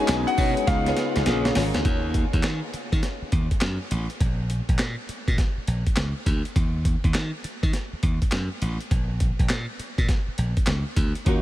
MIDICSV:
0, 0, Header, 1, 8, 480
1, 0, Start_track
1, 0, Tempo, 588235
1, 1510, Time_signature, 4, 2, 24, 8
1, 9318, End_track
2, 0, Start_track
2, 0, Title_t, "Grand piano"
2, 0, Program_c, 0, 0
2, 0, Note_on_c, 0, 80, 106
2, 221, Note_on_c, 0, 78, 95
2, 236, Note_off_c, 0, 80, 0
2, 525, Note_off_c, 0, 78, 0
2, 548, Note_on_c, 0, 77, 88
2, 1236, Note_off_c, 0, 77, 0
2, 9318, End_track
3, 0, Start_track
3, 0, Title_t, "String section"
3, 0, Program_c, 1, 48
3, 308, Note_on_c, 1, 63, 76
3, 310, Note_on_c, 1, 68, 66
3, 311, Note_on_c, 1, 71, 67
3, 313, Note_on_c, 1, 73, 89
3, 449, Note_off_c, 1, 63, 0
3, 450, Note_off_c, 1, 68, 0
3, 451, Note_off_c, 1, 71, 0
3, 452, Note_off_c, 1, 73, 0
3, 704, Note_on_c, 1, 65, 78
3, 705, Note_on_c, 1, 68, 78
3, 707, Note_on_c, 1, 71, 78
3, 708, Note_on_c, 1, 73, 84
3, 781, Note_off_c, 1, 65, 0
3, 781, Note_off_c, 1, 68, 0
3, 782, Note_off_c, 1, 71, 0
3, 783, Note_off_c, 1, 73, 0
3, 1267, Note_on_c, 1, 65, 76
3, 1269, Note_on_c, 1, 68, 70
3, 1271, Note_on_c, 1, 70, 72
3, 1272, Note_on_c, 1, 73, 80
3, 1409, Note_off_c, 1, 65, 0
3, 1409, Note_off_c, 1, 68, 0
3, 1410, Note_off_c, 1, 70, 0
3, 1411, Note_off_c, 1, 73, 0
3, 9187, Note_on_c, 1, 63, 80
3, 9188, Note_on_c, 1, 66, 77
3, 9190, Note_on_c, 1, 70, 81
3, 9191, Note_on_c, 1, 73, 94
3, 9318, Note_off_c, 1, 63, 0
3, 9318, Note_off_c, 1, 66, 0
3, 9318, Note_off_c, 1, 70, 0
3, 9318, Note_off_c, 1, 73, 0
3, 9318, End_track
4, 0, Start_track
4, 0, Title_t, "Tine electric piano"
4, 0, Program_c, 2, 4
4, 0, Control_c, 2, 64, 127
4, 0, Note_on_c, 2, 61, 81
4, 0, Note_on_c, 2, 62, 60
4, 0, Note_on_c, 2, 63, 71
4, 0, Note_on_c, 2, 66, 68
4, 0, Note_on_c, 2, 68, 86
4, 522, Note_off_c, 2, 61, 0
4, 526, Note_off_c, 2, 66, 0
4, 527, Note_off_c, 2, 68, 0
4, 544, Note_off_c, 2, 63, 0
4, 550, Note_on_c, 2, 59, 81
4, 554, Note_on_c, 2, 63, 73
4, 557, Note_on_c, 2, 65, 75
4, 560, Note_on_c, 2, 68, 92
4, 561, Note_off_c, 2, 62, 0
4, 561, Control_c, 2, 64, 0
4, 715, Control_c, 2, 64, 127
4, 963, Note_off_c, 2, 59, 0
4, 964, Note_off_c, 2, 63, 0
4, 966, Note_off_c, 2, 65, 0
4, 967, Note_off_c, 2, 68, 0
4, 1031, Note_on_c, 2, 58, 76
4, 1033, Note_on_c, 2, 60, 53
4, 1037, Note_on_c, 2, 65, 64
4, 1040, Control_c, 2, 64, 0
4, 1040, Note_on_c, 2, 68, 81
4, 1086, Note_on_c, 2, 61, 69
4, 1100, Note_off_c, 2, 60, 0
4, 1166, Control_c, 2, 64, 127
4, 1443, Note_off_c, 2, 58, 0
4, 1446, Note_off_c, 2, 65, 0
4, 1447, Note_off_c, 2, 68, 0
4, 1471, Note_off_c, 2, 61, 0
4, 1522, Control_c, 2, 64, 0
4, 9191, Note_on_c, 2, 58, 81
4, 9195, Note_on_c, 2, 61, 71
4, 9198, Note_on_c, 2, 65, 76
4, 9201, Note_on_c, 2, 66, 88
4, 9318, Note_off_c, 2, 58, 0
4, 9318, Note_off_c, 2, 61, 0
4, 9318, Note_off_c, 2, 65, 0
4, 9318, Note_off_c, 2, 66, 0
4, 9318, End_track
5, 0, Start_track
5, 0, Title_t, "Analog synth pad"
5, 0, Program_c, 3, 89
5, 0, Note_on_c, 3, 56, 81
5, 0, Note_on_c, 3, 59, 75
5, 0, Note_on_c, 3, 63, 83
5, 540, Note_off_c, 3, 63, 0
5, 548, Note_on_c, 3, 49, 76
5, 548, Note_on_c, 3, 65, 83
5, 1014, Note_off_c, 3, 59, 0
5, 1020, Note_off_c, 3, 49, 0
5, 1024, Note_off_c, 3, 65, 0
5, 1030, Note_on_c, 3, 49, 81
5, 1031, Note_on_c, 3, 58, 85
5, 1490, Note_off_c, 3, 56, 0
5, 1505, Note_off_c, 3, 49, 0
5, 1506, Note_off_c, 3, 58, 0
5, 9318, End_track
6, 0, Start_track
6, 0, Title_t, "Slap bass"
6, 0, Program_c, 4, 36
6, 70, Note_on_c, 4, 35, 95
6, 196, Note_off_c, 4, 35, 0
6, 310, Note_on_c, 4, 47, 93
6, 436, Note_off_c, 4, 47, 0
6, 550, Note_on_c, 4, 37, 112
6, 744, Note_off_c, 4, 37, 0
6, 948, Note_on_c, 4, 37, 84
6, 1015, Note_off_c, 4, 37, 0
6, 1032, Note_on_c, 4, 34, 106
6, 1225, Note_off_c, 4, 34, 0
6, 1273, Note_on_c, 4, 32, 94
6, 1397, Note_off_c, 4, 32, 0
6, 1427, Note_on_c, 4, 38, 91
6, 1495, Note_off_c, 4, 38, 0
6, 1511, Note_on_c, 4, 39, 102
6, 1830, Note_off_c, 4, 39, 0
6, 1905, Note_on_c, 4, 39, 82
6, 1974, Note_off_c, 4, 39, 0
6, 1992, Note_on_c, 4, 51, 93
6, 2116, Note_off_c, 4, 51, 0
6, 2386, Note_on_c, 4, 51, 92
6, 2454, Note_off_c, 4, 51, 0
6, 2713, Note_on_c, 4, 39, 85
6, 2838, Note_off_c, 4, 39, 0
6, 2952, Note_on_c, 4, 42, 94
6, 3077, Note_off_c, 4, 42, 0
6, 3191, Note_on_c, 4, 33, 80
6, 3316, Note_off_c, 4, 33, 0
6, 3432, Note_on_c, 4, 34, 96
6, 3750, Note_off_c, 4, 34, 0
6, 3826, Note_on_c, 4, 34, 86
6, 3894, Note_off_c, 4, 34, 0
6, 3912, Note_on_c, 4, 46, 89
6, 4037, Note_off_c, 4, 46, 0
6, 4307, Note_on_c, 4, 46, 85
6, 4374, Note_off_c, 4, 46, 0
6, 4631, Note_on_c, 4, 34, 90
6, 4756, Note_off_c, 4, 34, 0
6, 4872, Note_on_c, 4, 37, 93
6, 4997, Note_off_c, 4, 37, 0
6, 5109, Note_on_c, 4, 38, 80
6, 5235, Note_off_c, 4, 38, 0
6, 5352, Note_on_c, 4, 39, 104
6, 5671, Note_off_c, 4, 39, 0
6, 5747, Note_on_c, 4, 39, 83
6, 5814, Note_off_c, 4, 39, 0
6, 5833, Note_on_c, 4, 51, 100
6, 5957, Note_off_c, 4, 51, 0
6, 6226, Note_on_c, 4, 51, 89
6, 6294, Note_off_c, 4, 51, 0
6, 6553, Note_on_c, 4, 39, 96
6, 6677, Note_off_c, 4, 39, 0
6, 6791, Note_on_c, 4, 42, 90
6, 6916, Note_off_c, 4, 42, 0
6, 7031, Note_on_c, 4, 33, 85
6, 7156, Note_off_c, 4, 33, 0
6, 7271, Note_on_c, 4, 34, 100
6, 7590, Note_off_c, 4, 34, 0
6, 7666, Note_on_c, 4, 34, 86
6, 7734, Note_off_c, 4, 34, 0
6, 7751, Note_on_c, 4, 46, 94
6, 7876, Note_off_c, 4, 46, 0
6, 8145, Note_on_c, 4, 46, 87
6, 8213, Note_off_c, 4, 46, 0
6, 8471, Note_on_c, 4, 34, 92
6, 8596, Note_off_c, 4, 34, 0
6, 8710, Note_on_c, 4, 37, 95
6, 8836, Note_off_c, 4, 37, 0
6, 8948, Note_on_c, 4, 38, 83
6, 9075, Note_off_c, 4, 38, 0
6, 9189, Note_on_c, 4, 39, 108
6, 9318, Note_off_c, 4, 39, 0
6, 9318, End_track
7, 0, Start_track
7, 0, Title_t, "Muted slap bass strokes"
7, 2233, Note_on_c, 9, 29, 43
7, 2315, Note_off_c, 9, 29, 0
7, 2627, Note_on_c, 9, 29, 47
7, 2709, Note_off_c, 9, 29, 0
7, 4152, Note_on_c, 9, 29, 45
7, 4233, Note_off_c, 9, 29, 0
7, 4549, Note_on_c, 9, 29, 47
7, 4630, Note_off_c, 9, 29, 0
7, 6073, Note_on_c, 9, 29, 46
7, 6154, Note_off_c, 9, 29, 0
7, 6470, Note_on_c, 9, 29, 47
7, 6552, Note_off_c, 9, 29, 0
7, 7991, Note_on_c, 9, 29, 47
7, 8072, Note_off_c, 9, 29, 0
7, 8388, Note_on_c, 9, 29, 47
7, 8470, Note_off_c, 9, 29, 0
7, 9318, End_track
8, 0, Start_track
8, 0, Title_t, "Drums"
8, 64, Note_on_c, 9, 39, 103
8, 70, Note_on_c, 9, 38, 121
8, 70, Note_on_c, 9, 54, 81
8, 71, Note_on_c, 9, 42, 69
8, 145, Note_off_c, 9, 39, 0
8, 151, Note_off_c, 9, 54, 0
8, 152, Note_off_c, 9, 38, 0
8, 153, Note_off_c, 9, 42, 0
8, 226, Note_on_c, 9, 42, 50
8, 308, Note_off_c, 9, 42, 0
8, 308, Note_on_c, 9, 54, 70
8, 309, Note_on_c, 9, 36, 91
8, 312, Note_on_c, 9, 46, 66
8, 389, Note_off_c, 9, 54, 0
8, 391, Note_off_c, 9, 36, 0
8, 393, Note_off_c, 9, 46, 0
8, 466, Note_on_c, 9, 42, 55
8, 547, Note_off_c, 9, 42, 0
8, 549, Note_on_c, 9, 36, 103
8, 549, Note_on_c, 9, 38, 63
8, 551, Note_on_c, 9, 42, 76
8, 631, Note_off_c, 9, 36, 0
8, 631, Note_off_c, 9, 38, 0
8, 632, Note_off_c, 9, 42, 0
8, 705, Note_on_c, 9, 38, 58
8, 706, Note_on_c, 9, 42, 57
8, 786, Note_off_c, 9, 38, 0
8, 787, Note_off_c, 9, 42, 0
8, 788, Note_on_c, 9, 42, 79
8, 789, Note_on_c, 9, 38, 73
8, 870, Note_off_c, 9, 38, 0
8, 870, Note_off_c, 9, 42, 0
8, 944, Note_on_c, 9, 42, 63
8, 945, Note_on_c, 9, 38, 72
8, 1025, Note_off_c, 9, 42, 0
8, 1026, Note_off_c, 9, 38, 0
8, 1028, Note_on_c, 9, 42, 81
8, 1029, Note_on_c, 9, 38, 98
8, 1109, Note_off_c, 9, 42, 0
8, 1111, Note_off_c, 9, 38, 0
8, 1185, Note_on_c, 9, 38, 82
8, 1185, Note_on_c, 9, 42, 51
8, 1266, Note_off_c, 9, 38, 0
8, 1267, Note_off_c, 9, 42, 0
8, 1268, Note_on_c, 9, 38, 103
8, 1268, Note_on_c, 9, 46, 90
8, 1350, Note_off_c, 9, 38, 0
8, 1350, Note_off_c, 9, 46, 0
8, 1422, Note_on_c, 9, 42, 48
8, 1424, Note_on_c, 9, 38, 98
8, 1504, Note_off_c, 9, 42, 0
8, 1506, Note_off_c, 9, 38, 0
8, 1510, Note_on_c, 9, 36, 109
8, 1510, Note_on_c, 9, 42, 72
8, 1591, Note_off_c, 9, 36, 0
8, 1591, Note_off_c, 9, 42, 0
8, 1748, Note_on_c, 9, 42, 75
8, 1749, Note_on_c, 9, 36, 90
8, 1830, Note_off_c, 9, 42, 0
8, 1831, Note_off_c, 9, 36, 0
8, 1905, Note_on_c, 9, 36, 88
8, 1905, Note_on_c, 9, 42, 51
8, 1983, Note_on_c, 9, 39, 83
8, 1986, Note_off_c, 9, 36, 0
8, 1987, Note_off_c, 9, 42, 0
8, 1989, Note_on_c, 9, 38, 104
8, 1990, Note_on_c, 9, 42, 58
8, 2064, Note_off_c, 9, 39, 0
8, 2070, Note_off_c, 9, 38, 0
8, 2072, Note_off_c, 9, 42, 0
8, 2232, Note_on_c, 9, 42, 66
8, 2314, Note_off_c, 9, 42, 0
8, 2385, Note_on_c, 9, 36, 90
8, 2388, Note_on_c, 9, 42, 52
8, 2467, Note_off_c, 9, 36, 0
8, 2469, Note_off_c, 9, 42, 0
8, 2470, Note_on_c, 9, 38, 67
8, 2472, Note_on_c, 9, 42, 77
8, 2552, Note_off_c, 9, 38, 0
8, 2554, Note_off_c, 9, 42, 0
8, 2710, Note_on_c, 9, 42, 65
8, 2712, Note_on_c, 9, 36, 85
8, 2791, Note_off_c, 9, 42, 0
8, 2793, Note_off_c, 9, 36, 0
8, 2865, Note_on_c, 9, 42, 53
8, 2866, Note_on_c, 9, 36, 79
8, 2944, Note_on_c, 9, 39, 99
8, 2947, Note_off_c, 9, 36, 0
8, 2947, Note_off_c, 9, 42, 0
8, 2949, Note_on_c, 9, 42, 75
8, 2950, Note_on_c, 9, 38, 119
8, 3026, Note_off_c, 9, 39, 0
8, 3030, Note_off_c, 9, 42, 0
8, 3032, Note_off_c, 9, 38, 0
8, 3190, Note_on_c, 9, 42, 83
8, 3272, Note_off_c, 9, 42, 0
8, 3344, Note_on_c, 9, 42, 46
8, 3426, Note_off_c, 9, 42, 0
8, 3431, Note_on_c, 9, 36, 99
8, 3432, Note_on_c, 9, 42, 71
8, 3512, Note_off_c, 9, 36, 0
8, 3513, Note_off_c, 9, 42, 0
8, 3670, Note_on_c, 9, 42, 74
8, 3751, Note_off_c, 9, 42, 0
8, 3825, Note_on_c, 9, 36, 84
8, 3827, Note_on_c, 9, 42, 51
8, 3904, Note_on_c, 9, 39, 91
8, 3907, Note_off_c, 9, 36, 0
8, 3908, Note_off_c, 9, 42, 0
8, 3910, Note_on_c, 9, 38, 117
8, 3911, Note_on_c, 9, 42, 65
8, 3985, Note_off_c, 9, 39, 0
8, 3992, Note_off_c, 9, 38, 0
8, 3993, Note_off_c, 9, 42, 0
8, 4153, Note_on_c, 9, 42, 59
8, 4235, Note_off_c, 9, 42, 0
8, 4306, Note_on_c, 9, 36, 90
8, 4308, Note_on_c, 9, 42, 46
8, 4387, Note_off_c, 9, 36, 0
8, 4390, Note_off_c, 9, 42, 0
8, 4390, Note_on_c, 9, 38, 69
8, 4391, Note_on_c, 9, 36, 102
8, 4393, Note_on_c, 9, 42, 69
8, 4472, Note_off_c, 9, 38, 0
8, 4473, Note_off_c, 9, 36, 0
8, 4474, Note_off_c, 9, 42, 0
8, 4631, Note_on_c, 9, 42, 65
8, 4712, Note_off_c, 9, 42, 0
8, 4786, Note_on_c, 9, 36, 84
8, 4786, Note_on_c, 9, 42, 53
8, 4865, Note_on_c, 9, 39, 98
8, 4868, Note_off_c, 9, 36, 0
8, 4868, Note_off_c, 9, 42, 0
8, 4869, Note_on_c, 9, 42, 68
8, 4871, Note_on_c, 9, 38, 124
8, 4946, Note_off_c, 9, 39, 0
8, 4951, Note_off_c, 9, 42, 0
8, 4953, Note_off_c, 9, 38, 0
8, 5109, Note_on_c, 9, 36, 86
8, 5111, Note_on_c, 9, 42, 78
8, 5191, Note_off_c, 9, 36, 0
8, 5193, Note_off_c, 9, 42, 0
8, 5266, Note_on_c, 9, 42, 46
8, 5347, Note_off_c, 9, 42, 0
8, 5351, Note_on_c, 9, 36, 113
8, 5352, Note_on_c, 9, 42, 75
8, 5433, Note_off_c, 9, 36, 0
8, 5434, Note_off_c, 9, 42, 0
8, 5590, Note_on_c, 9, 36, 92
8, 5590, Note_on_c, 9, 42, 74
8, 5672, Note_off_c, 9, 36, 0
8, 5672, Note_off_c, 9, 42, 0
8, 5746, Note_on_c, 9, 36, 88
8, 5747, Note_on_c, 9, 42, 46
8, 5825, Note_on_c, 9, 39, 87
8, 5827, Note_off_c, 9, 36, 0
8, 5828, Note_off_c, 9, 42, 0
8, 5832, Note_on_c, 9, 38, 103
8, 5833, Note_on_c, 9, 42, 60
8, 5907, Note_off_c, 9, 39, 0
8, 5913, Note_off_c, 9, 38, 0
8, 5915, Note_off_c, 9, 42, 0
8, 6073, Note_on_c, 9, 42, 64
8, 6155, Note_off_c, 9, 42, 0
8, 6226, Note_on_c, 9, 36, 95
8, 6228, Note_on_c, 9, 42, 52
8, 6307, Note_off_c, 9, 36, 0
8, 6309, Note_off_c, 9, 42, 0
8, 6310, Note_on_c, 9, 38, 64
8, 6312, Note_on_c, 9, 42, 73
8, 6391, Note_off_c, 9, 38, 0
8, 6394, Note_off_c, 9, 42, 0
8, 6551, Note_on_c, 9, 42, 67
8, 6552, Note_on_c, 9, 36, 92
8, 6632, Note_off_c, 9, 42, 0
8, 6634, Note_off_c, 9, 36, 0
8, 6706, Note_on_c, 9, 36, 80
8, 6706, Note_on_c, 9, 42, 55
8, 6785, Note_on_c, 9, 39, 88
8, 6788, Note_off_c, 9, 36, 0
8, 6788, Note_off_c, 9, 42, 0
8, 6790, Note_on_c, 9, 42, 72
8, 6791, Note_on_c, 9, 38, 120
8, 6867, Note_off_c, 9, 39, 0
8, 6871, Note_off_c, 9, 42, 0
8, 6873, Note_off_c, 9, 38, 0
8, 7031, Note_on_c, 9, 42, 85
8, 7113, Note_off_c, 9, 42, 0
8, 7185, Note_on_c, 9, 42, 49
8, 7267, Note_off_c, 9, 42, 0
8, 7271, Note_on_c, 9, 36, 101
8, 7272, Note_on_c, 9, 42, 70
8, 7353, Note_off_c, 9, 36, 0
8, 7354, Note_off_c, 9, 42, 0
8, 7509, Note_on_c, 9, 42, 76
8, 7510, Note_on_c, 9, 36, 92
8, 7591, Note_off_c, 9, 36, 0
8, 7591, Note_off_c, 9, 42, 0
8, 7665, Note_on_c, 9, 36, 83
8, 7667, Note_on_c, 9, 42, 49
8, 7744, Note_on_c, 9, 39, 96
8, 7747, Note_off_c, 9, 36, 0
8, 7748, Note_off_c, 9, 42, 0
8, 7751, Note_on_c, 9, 38, 106
8, 7752, Note_on_c, 9, 42, 61
8, 7826, Note_off_c, 9, 39, 0
8, 7832, Note_off_c, 9, 38, 0
8, 7833, Note_off_c, 9, 42, 0
8, 7993, Note_on_c, 9, 42, 61
8, 8074, Note_off_c, 9, 42, 0
8, 8145, Note_on_c, 9, 36, 91
8, 8147, Note_on_c, 9, 42, 51
8, 8226, Note_off_c, 9, 36, 0
8, 8229, Note_off_c, 9, 42, 0
8, 8229, Note_on_c, 9, 38, 68
8, 8230, Note_on_c, 9, 36, 98
8, 8231, Note_on_c, 9, 42, 74
8, 8311, Note_off_c, 9, 36, 0
8, 8311, Note_off_c, 9, 38, 0
8, 8313, Note_off_c, 9, 42, 0
8, 8469, Note_on_c, 9, 42, 68
8, 8551, Note_off_c, 9, 42, 0
8, 8624, Note_on_c, 9, 42, 52
8, 8625, Note_on_c, 9, 36, 90
8, 8702, Note_on_c, 9, 39, 97
8, 8705, Note_off_c, 9, 42, 0
8, 8706, Note_off_c, 9, 36, 0
8, 8707, Note_on_c, 9, 42, 71
8, 8708, Note_on_c, 9, 38, 123
8, 8784, Note_off_c, 9, 39, 0
8, 8788, Note_off_c, 9, 42, 0
8, 8790, Note_off_c, 9, 38, 0
8, 8947, Note_on_c, 9, 36, 89
8, 8948, Note_on_c, 9, 42, 85
8, 9029, Note_off_c, 9, 36, 0
8, 9029, Note_off_c, 9, 42, 0
8, 9102, Note_on_c, 9, 42, 45
8, 9183, Note_off_c, 9, 42, 0
8, 9188, Note_on_c, 9, 42, 75
8, 9189, Note_on_c, 9, 36, 114
8, 9270, Note_off_c, 9, 42, 0
8, 9271, Note_off_c, 9, 36, 0
8, 9318, End_track
0, 0, End_of_file